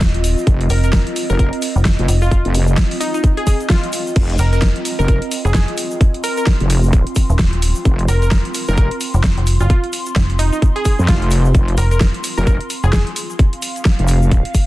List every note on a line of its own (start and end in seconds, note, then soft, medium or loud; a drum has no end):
0.00 0.35 D#1 loud
0.00 14.66 C4 medium
0.00 14.66 F4 loud
0.00 6.07 D#5 medium
0.00 kick loud
0.00 snare loud
0.00 closed hi-hat medium
0.00 shaker soft
0.14 closed hi-hat medium
0.24 open hi-hat loud
0.24 shaker medium
0.38 shaker medium
0.47 0.68 F1 loud
0.47 kick loud
0.47 closed hi-hat medium
0.47 shaker soft
0.61 closed hi-hat medium
0.70 1.05 F1 loud
0.70 0.79 A#4 medium
0.70 open hi-hat loud
0.70 shaker medium
0.84 0.90 A#4 medium
0.84 closed hi-hat soft
0.84 shaker medium
0.93 kick loud
0.93 snare loud
0.93 closed hi-hat medium
0.93 shaker soft
1.07 closed hi-hat medium
1.16 open hi-hat loud
1.16 shaker medium
1.29 1.51 F1 medium
1.29 1.36 A#4 medium
1.29 shaker soft
1.39 1.48 A#4 medium
1.39 kick loud
1.39 closed hi-hat medium
1.39 shaker soft
1.53 closed hi-hat medium
1.62 open hi-hat loud
1.62 shaker medium
1.76 1.97 F1 loud
1.76 shaker medium
1.85 kick loud
1.85 snare loud
1.85 closed hi-hat medium
1.85 shaker soft
1.99 2.07 F1 loud
1.99 closed hi-hat medium
2.08 2.43 F1 loud
2.08 open hi-hat loud
2.08 shaker medium
2.22 2.28 F4 medium
2.22 shaker medium
2.31 2.40 F4 medium
2.31 kick loud
2.31 closed hi-hat medium
2.31 shaker soft
2.45 2.76 F1 loud
2.45 closed hi-hat medium
2.54 open hi-hat loud
2.54 shaker medium
2.67 closed hi-hat soft
2.67 shaker medium
2.77 kick loud
2.77 snare loud
2.77 closed hi-hat medium
2.77 shaker soft
2.91 open hi-hat medium
3.01 3.09 D#4 medium
3.01 open hi-hat loud
3.01 shaker medium
3.14 3.20 D#4 medium
3.14 closed hi-hat soft
3.14 shaker medium
3.24 kick loud
3.24 closed hi-hat medium
3.24 shaker soft
3.37 3.43 G#4 medium
3.37 closed hi-hat medium
3.47 3.56 G#4 medium
3.47 kick medium
3.47 open hi-hat loud
3.47 shaker medium
3.60 closed hi-hat soft
3.60 shaker medium
3.70 4.16 F4 medium
3.70 kick loud
3.70 snare loud
3.70 closed hi-hat medium
3.70 shaker soft
3.83 closed hi-hat medium
3.93 open hi-hat loud
3.93 shaker medium
4.07 shaker medium
4.16 4.38 F1 medium
4.16 kick loud
4.16 closed hi-hat medium
4.16 crash medium
4.16 shaker soft
4.30 closed hi-hat medium
4.38 4.74 F1 loud
4.38 4.48 A#4 medium
4.38 open hi-hat loud
4.38 shaker medium
4.53 4.59 A#4 medium
4.53 closed hi-hat soft
4.53 shaker soft
4.62 kick loud
4.62 snare loud
4.62 closed hi-hat medium
4.62 shaker soft
4.76 closed hi-hat medium
4.85 open hi-hat loud
4.85 shaker medium
4.99 5.20 F1 loud
4.99 5.05 A#4 medium
4.99 shaker medium
5.08 5.17 A#4 medium
5.08 kick loud
5.08 closed hi-hat medium
5.08 shaker soft
5.22 closed hi-hat medium
5.31 open hi-hat loud
5.31 shaker loud
5.45 5.66 F1 loud
5.45 5.51 G#4 medium
5.45 shaker medium
5.54 5.63 G#4 medium
5.54 kick loud
5.54 snare loud
5.54 closed hi-hat medium
5.54 shaker soft
5.68 closed hi-hat medium
5.77 open hi-hat loud
5.77 shaker medium
5.91 shaker medium
6.01 13.45 C6 medium
6.01 kick loud
6.01 closed hi-hat medium
6.01 shaker soft
6.14 closed hi-hat medium
6.24 6.33 A#4 medium
6.24 open hi-hat loud
6.24 shaker medium
6.37 6.44 A#4 medium
6.37 closed hi-hat soft
6.37 shaker medium
6.47 kick loud
6.47 snare loud
6.47 closed hi-hat medium
6.47 shaker soft
6.60 7.04 F1 loud
6.60 closed hi-hat medium
6.70 open hi-hat loud
6.70 shaker medium
6.83 shaker medium
6.93 kick loud
6.93 closed hi-hat medium
6.93 shaker soft
7.07 closed hi-hat medium
7.15 kick medium
7.15 open hi-hat loud
7.15 shaker loud
7.30 7.74 D#1 loud
7.30 shaker medium
7.39 kick loud
7.39 snare loud
7.39 closed hi-hat medium
7.39 shaker soft
7.53 closed hi-hat medium
7.62 open hi-hat loud
7.62 shaker medium
7.75 shaker medium
7.85 8.07 F1 loud
7.85 kick loud
7.85 closed hi-hat medium
7.85 shaker soft
7.99 closed hi-hat medium
8.08 8.43 F1 loud
8.08 8.17 A#4 medium
8.08 open hi-hat loud
8.08 shaker loud
8.22 8.28 A#4 medium
8.22 closed hi-hat soft
8.22 shaker medium
8.31 kick loud
8.31 snare loud
8.31 closed hi-hat medium
8.31 shaker soft
8.45 closed hi-hat medium
8.54 open hi-hat loud
8.54 shaker loud
8.68 8.89 F1 loud
8.68 8.74 A#4 medium
8.68 shaker medium
8.77 8.86 A#4 medium
8.77 kick loud
8.77 closed hi-hat medium
8.77 shaker soft
8.91 closed hi-hat medium
9.01 open hi-hat loud
9.01 shaker medium
9.14 9.35 F1 loud
9.14 shaker medium
9.24 kick loud
9.24 snare loud
9.24 closed hi-hat medium
9.24 shaker soft
9.37 9.58 F1 loud
9.37 closed hi-hat medium
9.47 open hi-hat loud
9.47 shaker medium
9.60 9.68 F#1 medium
9.60 9.67 F4 medium
9.60 shaker medium
9.70 9.79 F4 medium
9.70 kick loud
9.70 closed hi-hat medium
9.70 shaker soft
9.84 closed hi-hat medium
9.93 open hi-hat loud
9.93 shaker medium
10.06 closed hi-hat soft
10.06 shaker medium
10.16 10.51 F1 loud
10.16 kick loud
10.16 snare loud
10.16 closed hi-hat medium
10.16 shaker soft
10.30 closed hi-hat medium
10.39 10.48 D#4 medium
10.39 open hi-hat loud
10.39 shaker medium
10.53 10.59 D#4 medium
10.53 shaker medium
10.62 kick loud
10.62 closed hi-hat medium
10.62 shaker soft
10.76 10.82 G#4 medium
10.76 closed hi-hat medium
10.85 10.94 G#4 medium
10.85 kick medium
10.85 open hi-hat loud
10.85 shaker medium
10.99 11.07 F2 loud
10.99 shaker medium
11.08 11.53 F1 loud
11.08 11.55 F4 medium
11.08 kick loud
11.08 snare loud
11.08 closed hi-hat medium
11.08 shaker soft
11.22 closed hi-hat medium
11.31 open hi-hat loud
11.31 shaker loud
11.45 shaker medium
11.54 11.76 F1 medium
11.54 kick loud
11.54 closed hi-hat medium
11.54 shaker soft
11.68 closed hi-hat medium
11.78 12.12 F1 loud
11.78 11.86 A#4 medium
11.78 open hi-hat loud
11.78 shaker medium
11.91 11.97 A#4 medium
11.91 closed hi-hat soft
11.91 shaker medium
12.01 kick loud
12.01 snare loud
12.01 closed hi-hat medium
12.01 shaker soft
12.14 closed hi-hat medium
12.24 open hi-hat loud
12.24 shaker medium
12.37 12.58 F1 loud
12.37 12.43 A#4 medium
12.37 shaker medium
12.47 12.56 A#4 medium
12.47 kick loud
12.47 closed hi-hat medium
12.47 shaker soft
12.61 closed hi-hat medium
12.70 open hi-hat loud
12.70 shaker medium
12.83 13.05 F1 loud
12.83 12.90 G#4 medium
12.83 shaker medium
12.93 13.02 G#4 medium
12.93 kick loud
12.93 snare loud
12.93 closed hi-hat medium
12.93 shaker soft
13.07 closed hi-hat medium
13.16 open hi-hat loud
13.16 shaker medium
13.30 shaker medium
13.39 14.66 F5 medium
13.39 kick loud
13.39 closed hi-hat medium
13.39 shaker soft
13.53 closed hi-hat medium
13.62 open hi-hat loud
13.62 shaker medium
13.76 closed hi-hat soft
13.76 shaker soft
13.85 kick loud
13.85 snare loud
13.85 closed hi-hat medium
13.85 shaker soft
13.99 14.43 F1 loud
13.99 closed hi-hat medium
14.08 open hi-hat loud
14.08 shaker medium
14.22 shaker medium
14.31 kick loud
14.31 closed hi-hat medium
14.31 shaker soft
14.45 closed hi-hat medium
14.54 kick medium
14.54 open hi-hat loud
14.54 shaker medium